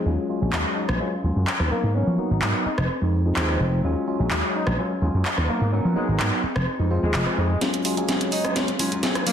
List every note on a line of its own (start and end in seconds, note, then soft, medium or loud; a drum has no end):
0.00 0.10 G#3 medium
0.05 0.15 D#2 medium
0.05 0.98 F#3 medium
0.05 0.26 F#3 medium
0.05 0.26 G#3 medium
0.05 0.99 C#4 medium
0.05 0.26 C#4 medium
0.05 0.26 F4 medium
0.05 1.00 F4 medium
0.05 1.01 G#4 medium
0.29 0.39 F#3 medium
0.29 0.39 G#3 medium
0.29 0.39 C#4 medium
0.29 0.39 F4 medium
0.29 tambourine medium
0.41 0.51 A#1 medium
0.41 0.97 F#3 medium
0.41 0.97 G#3 medium
0.41 0.98 C#4 medium
0.41 tambourine soft
0.53 0.63 D#2 medium
0.53 clap loud
0.76 0.97 D#4 medium
0.89 0.98 A#1 medium
0.89 cross-stick medium
0.99 1.71 F#3 medium
0.99 1.14 F#3 medium
0.99 1.14 G#3 medium
0.99 1.71 C#4 medium
0.99 1.14 C#4 medium
0.99 1.14 F4 medium
0.99 1.71 F4 medium
0.99 1.70 G#4 medium
1.23 1.34 D#2 medium
1.23 1.45 F#3 medium
1.23 1.45 G#3 medium
1.23 1.45 C#4 medium
1.23 1.45 F4 medium
1.23 tambourine medium
1.36 1.45 F#2 medium
1.36 tambourine soft
1.47 clap loud
1.60 1.69 D#2 medium
1.60 cross-stick medium
1.71 1.85 F#3 medium
1.71 1.92 A#3 medium
1.71 1.85 A#3 medium
1.71 1.85 B3 medium
1.71 1.94 B3 soft
1.71 1.85 D#4 medium
1.71 1.94 D#4 medium
1.71 1.94 A#4 medium
1.71 muted slap bass stroke soft
1.83 2.02 G#2 medium
1.94 2.15 F#3 medium
1.94 2.65 F#3 medium
1.94 2.15 A#3 medium
1.94 2.15 B3 medium
1.94 2.66 B3 medium
1.94 2.16 C#4 medium
1.94 2.15 C#4 medium
1.94 2.66 D#4 medium
1.94 2.64 A#4 medium
1.94 tambourine soft
2.07 2.16 F3 medium
2.17 2.29 F#3 medium
2.17 2.29 A#3 medium
2.17 2.29 B3 medium
2.17 2.29 D#4 loud
2.17 tambourine medium
2.30 2.40 G#1 medium
2.30 2.64 F#3 medium
2.30 2.64 B3 medium
2.30 2.64 D#4 medium
2.30 2.64 A#4 medium
2.30 tambourine soft
2.42 2.52 G#2 medium
2.42 clap loud
2.65 3.61 C4 medium
2.65 2.73 D#4 medium
2.65 3.61 D#4 medium
2.65 3.59 G#4 medium
2.65 muted slap bass stroke soft
2.78 2.87 F1 medium
2.78 2.85 D#4 medium
2.78 cross-stick medium
3.01 3.33 F2 medium
3.01 3.22 F3 medium
3.01 3.22 G#3 medium
3.01 3.22 C4 medium
3.01 3.22 D#4 medium
3.01 tambourine soft
3.13 tambourine medium
3.25 3.34 F3 medium
3.25 3.35 G#3 medium
3.25 3.35 C4 medium
3.25 3.35 D#4 medium
3.25 tambourine soft
3.36 3.55 D#2 medium
3.36 3.81 F3 medium
3.36 3.81 G#3 medium
3.36 3.81 C4 medium
3.36 3.81 D#4 loud
3.36 clap loud
3.49 cross-stick medium
3.59 3.79 F1 medium
3.59 3.84 D#4 soft
3.59 3.83 G#4 medium
3.59 tambourine medium
3.72 tambourine soft
3.83 3.93 D#2 medium
3.83 4.76 F#3 medium
3.83 4.04 F#3 medium
3.83 4.04 G#3 medium
3.83 4.77 C#4 medium
3.83 4.04 C#4 medium
3.83 4.04 F4 medium
3.83 4.78 F4 medium
3.83 4.79 G#4 medium
3.83 tambourine soft
4.07 4.16 F#3 medium
4.07 4.17 G#3 medium
4.07 4.17 C#4 medium
4.07 4.17 F4 medium
4.07 tambourine medium
4.19 4.29 A#1 medium
4.19 4.75 F#3 medium
4.19 4.75 G#3 medium
4.19 4.76 C#4 medium
4.19 tambourine soft
4.31 4.41 D#2 medium
4.31 clap loud
4.54 4.75 D#4 medium
4.54 tambourine medium
4.67 4.76 A#1 medium
4.67 cross-stick medium
4.77 5.49 F#3 medium
4.77 4.92 F#3 medium
4.77 4.92 G#3 medium
4.77 5.49 C#4 medium
4.77 4.92 C#4 medium
4.77 4.92 F4 medium
4.77 5.49 F4 medium
4.77 5.48 G#4 medium
4.77 tambourine soft
4.91 tambourine soft
5.01 5.12 D#2 medium
5.01 5.23 F#3 medium
5.01 5.23 G#3 medium
5.01 5.23 C#4 medium
5.01 5.23 F4 medium
5.01 tambourine medium
5.14 5.23 F#2 medium
5.14 tambourine soft
5.25 clap loud
5.38 5.47 D#2 medium
5.38 cross-stick medium
5.48 5.63 F#3 medium
5.48 5.63 A#3 medium
5.48 5.70 A#3 medium
5.48 5.63 B3 medium
5.48 5.72 B3 medium
5.48 5.63 D#4 medium
5.48 5.72 D#4 medium
5.48 5.72 A#4 medium
5.48 muted slap bass stroke soft
5.48 tambourine medium
5.61 5.80 G#2 medium
5.72 5.93 F#3 medium
5.72 6.43 F#3 medium
5.72 5.93 A#3 medium
5.72 5.93 B3 medium
5.72 6.44 B3 medium
5.72 5.93 C#4 medium
5.72 6.44 D#4 medium
5.72 6.42 A#4 medium
5.72 tambourine soft
5.85 5.94 F3 medium
5.85 tambourine soft
5.96 6.06 F#3 medium
5.96 6.17 G#3 medium
5.96 6.07 A#3 medium
5.96 6.07 B3 medium
5.96 6.07 D#4 loud
5.96 tambourine medium
6.08 6.17 G#1 medium
6.08 6.42 F#3 medium
6.08 6.42 B3 medium
6.08 6.42 D#4 medium
6.08 6.42 A#4 medium
6.08 tambourine soft
6.20 6.30 G#2 medium
6.20 clap loud
6.42 7.39 C4 medium
6.42 7.39 D#4 medium
6.42 7.37 G#4 medium
6.42 muted slap bass stroke soft
6.42 tambourine medium
6.56 6.65 F1 medium
6.56 cross-stick medium
6.67 tambourine soft
6.79 7.02 F2 medium
6.79 6.88 F3 medium
6.79 6.88 G#3 medium
6.79 6.88 C4 medium
6.79 6.89 D#4 medium
6.79 tambourine soft
6.90 7.00 F3 medium
6.90 7.00 G#3 medium
6.90 7.00 C4 medium
6.90 7.00 F4 loud
6.90 tambourine medium
7.03 7.12 D#2 medium
7.03 7.35 F3 medium
7.03 7.35 G#3 medium
7.03 7.36 G#3 medium
7.03 7.35 C4 medium
7.03 7.35 F4 medium
7.03 tambourine soft
7.14 7.24 F1 medium
7.14 clap loud
7.27 cross-stick medium
7.37 7.57 F2 medium
7.37 7.51 F3 medium
7.37 7.52 G#3 medium
7.37 7.62 G#3 medium
7.37 7.52 C4 medium
7.37 7.52 D#4 medium
7.37 7.61 D#4 soft
7.37 7.61 G#4 medium
7.37 tambourine medium
7.51 tambourine soft
7.61 7.71 D#2 medium
7.61 7.97 F#3 medium
7.61 7.82 F#3 medium
7.61 7.82 G#3 medium
7.61 7.97 C#4 medium
7.61 7.82 C#4 medium
7.61 7.97 F4 medium
7.61 7.82 F4 medium
7.61 7.96 G#4 medium
7.61 snare soft
7.61 closed hi-hat medium
7.74 closed hi-hat soft
7.85 7.94 F#3 medium
7.85 7.94 G#3 medium
7.85 7.94 C#4 medium
7.85 7.95 F4 medium
7.85 open hi-hat loud
7.96 8.06 A#1 medium
7.96 8.53 F#3 medium
7.96 8.53 G#3 medium
7.96 8.53 C#4 medium
7.96 8.07 C#4 medium
7.96 8.08 F4 medium
7.96 8.08 G#4 medium
7.96 closed hi-hat soft
8.08 8.19 D#2 loud
8.08 8.44 F#3 medium
8.08 8.45 C#4 medium
8.08 8.44 F4 medium
8.08 8.43 G#4 loud
8.08 snare soft
8.08 closed hi-hat medium
8.21 closed hi-hat soft
8.32 8.53 D#4 medium
8.32 open hi-hat medium
8.44 8.54 A#1 medium
8.44 8.68 C#4 medium
8.44 8.68 F4 medium
8.44 8.66 G#4 medium
8.44 cross-stick medium
8.44 closed hi-hat soft
8.55 8.69 F#3 medium
8.55 8.70 G#3 medium
8.55 8.70 C#4 medium
8.55 8.70 F4 medium
8.55 snare medium
8.55 closed hi-hat medium
8.68 8.78 C#4 soft
8.68 8.79 F4 medium
8.68 8.79 G#4 medium
8.68 closed hi-hat soft
8.79 8.89 D#2 medium
8.79 8.92 F#3 medium
8.79 9.01 F#3 medium
8.79 9.01 G#3 medium
8.79 8.92 C#4 medium
8.79 9.01 C#4 medium
8.79 9.01 F4 medium
8.79 8.91 F4 medium
8.79 8.90 G#4 medium
8.79 open hi-hat medium
8.91 9.01 F#2 loud
8.91 9.02 C#4 soft
8.91 9.02 F4 medium
8.91 9.03 G#4 medium
8.91 closed hi-hat soft
9.03 9.25 F#3 medium
9.03 9.26 C#4 medium
9.03 9.27 F4 medium
9.03 9.27 G#4 loud
9.03 snare medium
9.03 closed hi-hat medium
9.15 9.24 D#2 medium
9.15 cross-stick medium
9.15 closed hi-hat soft
9.26 9.32 F#3 medium
9.26 9.32 A#3 medium
9.26 9.32 B3 medium
9.26 9.32 D#4 medium
9.26 9.32 A#4 medium
9.26 muted slap bass stroke soft
9.26 open hi-hat loud